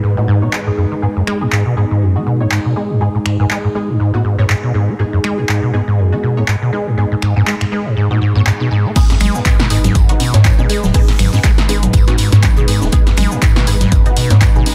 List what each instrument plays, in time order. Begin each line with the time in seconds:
Already playing: analog synth pad G#3 D#4 B4
0.03 acid bass G#2
0.17 acid bass A2, synth stab B3 D#4 F#4
0.28 acid bass G#2
0.42 acid bass B2, synth stab B3 D#4 C#5
0.53 acid bass G#3, clap
0.67 acid bass G#2, synth stab B3 D#4 G#4
0.78 acid bass F#2, synth stab B3 D#4 G#4
0.91 acid bass D#3
1.02 acid bass G#2, synth stab B3 D#4 G#4, analog synth pad G#4
1.16 acid bass F#2
1.27 acid bass G#3, finger snap
1.41 acid bass G#2, synth stab B3 D#4 G#4
1.52 acid bass G#2, clap
1.66 acid bass B2
1.77 acid bass G#2, synth stab B3 D#4 G#4
1.91 acid bass G#2
2.02 acid bass F#2
2.16 acid bass F#3, synth stab B3 D#4 F#4
2.27 acid bass B2
2.40 acid bass G#2, synth stab B3 D#4 C#5
2.51 acid bass G#2, clap
2.65 acid bass B2
2.76 acid bass G#3, synth stab B3 D#4 G#4
2.90 acid bass G#2
3.01 acid bass G#2, synth stab B3 D#4 G#4
3.15 acid bass A2
3.26 acid bass G#2, finger snap
3.40 acid bass G#2, synth stab B3 D#4 G#4
3.50 acid bass G#3, clap
3.64 acid bass G#2
3.75 acid bass G#3, synth stab B3 D#4 G#4
3.89 acid bass G#2
4.00 acid bass G#2
4.14 acid bass A2, synth stab B3 D#4 F#4
4.25 acid bass G#2
4.38 acid bass G#2, synth stab B3 D#4 C#5
4.49 acid bass G#2, clap
4.63 acid bass B2
4.74 acid bass G#2, synth stab B3 D#4 G#4
4.88 acid bass B3
4.99 acid bass G#2, synth stab B3 D#4 G#4
5.13 acid bass F#2
5.24 acid bass G#3, finger snap
5.38 acid bass G#2, synth stab B3 D#4 G#4
5.49 acid bass G#2, clap
5.63 acid bass B2
5.74 acid bass G#2, synth stab B3 D#4 G#4
5.88 acid bass G#2
5.98 acid bass F#2
6.12 acid bass F#3, synth stab B3 D#4 F#4
6.23 acid bass B2
6.37 acid bass G#2, synth stab B3 D#4 C#5
6.48 acid bass G#2, clap
6.62 acid bass B2
6.73 acid bass G#3, synth stab B3 D#4 G#4
6.87 acid bass G#2
6.97 acid bass G#2, synth stab B3 D#4 G#4
7.11 acid bass A2
7.22 acid bass G#2, finger snap
7.36 acid bass G#2, synth stab B3 D#4 G#4
7.47 acid bass G#3, clap
7.61 acid bass G#2, finger snap
7.72 acid bass G#3, synth stab B3 D#4 G#4
7.86 acid bass G#2
7.97 acid bass G#2
8.11 acid bass A2, synth stab B3 D#4 F#4
8.21 acid bass G#2
8.36 acid bass G#2, synth stab B3 D#4 C#5
8.46 acid bass G#2, clap
8.60 acid bass B2, synth stab B3 D#4 G#4
8.71 acid bass G#2, synth stab B3 D#4 G#4
8.85 acid bass B3
8.96 acid bass G#2, analog synth pad G#3 D#4 B4, synth stab B3 D#4 G#4, kick, closed hi-hat, crash, tambourine, shaker
9.10 acid bass F#2, snare, closed hi-hat, high conga, shaker
9.20 analog synth bass G#1, acid bass G#3, finger snap, open hi-hat, tambourine, low conga
9.35 acid bass G#2, synth stab B3 D#4 G#4, shaker
9.45 acid bass G#2, kick, snare, clap, closed hi-hat, tambourine, high conga, shaker
9.59 analog synth bass G#1, acid bass B2, snare, shaker
9.70 acid bass G#2, synth stab B3 D#4 G#4, open hi-hat, tambourine
9.84 acid bass G#2, snare, closed hi-hat, high conga, low conga, shaker
9.95 analog synth bass G#1, acid bass F#2, kick, closed hi-hat, tambourine, shaker
10.09 acid bass F#3, synth stab B3 D#4 F#4, closed hi-hat, shaker
10.20 acid bass B2, open hi-hat, tambourine, high conga
10.34 acid bass G#2, analog synth bass G#2, synth stab B3 D#4 C#5, snare, closed hi-hat, shaker
10.44 acid bass G#2, kick, snare, clap, closed hi-hat, tambourine, shaker
10.58 analog synth bass G#1, acid bass B2, synth stab B3 D#4 G#4, high conga, shaker
10.69 acid bass G#3, synth stab B3 D#4 G#4, open hi-hat, tambourine
10.83 analog synth bass D#1, acid bass G#2, snare, low conga, shaker
10.94 acid bass G#2, synth stab B3 D#4 G#4, kick, closed hi-hat, open hi-hat, high conga, shaker
11.08 acid bass A2, snare, closed hi-hat, shaker
11.19 analog synth bass G#1, acid bass G#2, finger snap, open hi-hat, tambourine, low conga
11.33 acid bass G#2, synth stab B3 D#4 G#4, snare, high conga, shaker
11.44 acid bass G#3, kick, snare, clap, closed hi-hat, tambourine, shaker
11.58 analog synth bass G#1, acid bass G#2, snare, closed hi-hat, shaker
11.69 acid bass G#3, synth stab B3 D#4 G#4, open hi-hat, tambourine, high conga
11.83 acid bass G#2, closed hi-hat, low conga, shaker
11.93 analog synth bass G#1, acid bass G#2, kick, closed hi-hat, tambourine, shaker
12.07 acid bass A2, synth stab B3 D#4 F#4, snare, closed hi-hat, high conga, shaker
12.18 acid bass G#2, open hi-hat, tambourine
12.32 acid bass G#2, analog synth bass G#2, synth stab B3 D#4 C#5, snare, closed hi-hat, shaker
12.43 acid bass G#2, kick, snare, clap, closed hi-hat, tambourine, high conga, low conga, shaker
12.56 analog synth bass G#1, acid bass B2, synth stab B3 D#4 G#4, closed hi-hat, shaker
12.68 acid bass G#2, synth stab B3 D#4 G#4, open hi-hat, tambourine
12.81 analog synth bass D#1, acid bass B3, snare, high conga, shaker
12.92 acid bass G#2, synth stab B3 D#4 G#4, kick, closed hi-hat, tambourine, shaker
13.06 acid bass F#2, snare, closed hi-hat, shaker
13.17 analog synth bass G#1, acid bass G#3, finger snap, open hi-hat, tambourine, high conga, low conga
13.31 acid bass G#2, synth stab B3 D#4 G#4, shaker
13.42 acid bass G#2, kick, snare, clap, closed hi-hat, tambourine, shaker
13.56 analog synth bass G#1, acid bass B2, snare, high conga, shaker
13.67 acid bass G#2, synth stab B3 D#4 G#4, open hi-hat, tambourine
13.80 acid bass G#2, snare, closed hi-hat, low conga, shaker
13.92 analog synth bass G#1, acid bass F#2, kick, closed hi-hat, tambourine, high conga, shaker
14.06 acid bass F#3, synth stab B3 D#4 F#4, closed hi-hat, shaker
14.17 acid bass B2, open hi-hat, tambourine
14.30 analog synth bass G#2, acid bass G#2, synth stab B3 D#4 C#5, snare, closed hi-hat, high conga, shaker
14.41 acid bass G#2, kick, snare, clap, closed hi-hat, tambourine, shaker
14.55 analog synth bass G#1, acid bass B2, synth stab B3 D#4 G#4, shaker
14.66 acid bass G#3, synth stab B3 D#4 G#4, open hi-hat, tambourine, high conga